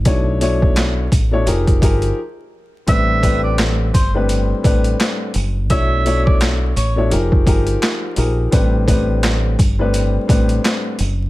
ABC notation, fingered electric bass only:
X:1
M:4/4
L:1/8
Q:"Swing 16ths" 1/4=85
K:Bphr
V:1 name="Fingered electric bass" clef=bass
B,,,3 A,,, =F,,, G,,, z2 | A,,,3 G,,,2 A,,, z F,,, | B,,,3 A,,, =F,,, G,,, z _B,,, | A,,,3 G,,,2 A,,, z F,,, |]